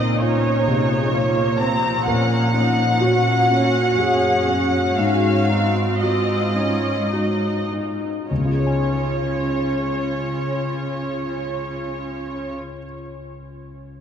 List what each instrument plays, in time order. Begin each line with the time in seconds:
Already playing: grand piano A#2 C4, cello section A#2, viola section C4 D#4, violin section D#5
0.20 viola section C#4, grand piano F4, violin section C#5
0.67 grand piano C3, viola section C#3
1.14 viola section F3 A#3, grand piano F4
1.59 viola section C4, grand piano C4, violin section A#5
2.06 grand piano A#2, cello section A#2, viola section C#4, violin section F#5
2.54 grand piano C#4, viola section D#4
3.01 viola section C#4 F#4, grand piano F#4
3.50 grand piano C#4, viola section F#4
3.98 cello section F#2, grand piano F#4, viola section G#4
4.48 grand piano C#4, viola section F#4
4.97 grand piano G#2, cello section G#2, viola section C#4, violin section F5
5.49 viola section C4, grand piano D#4
6.03 viola section C4 F4, grand piano F#4, violin section D#5
6.56 viola section C#4, grand piano D#4
7.12 viola section D#4, grand piano F#4
7.71 grand piano D#4
8.30 grand piano C#2, cello section C#3, viola section C#4 F4, violin section C#5
8.38 grand piano C#3
8.45 grand piano F4
8.52 grand piano G#4
8.59 grand piano C#5
8.66 grand piano G#5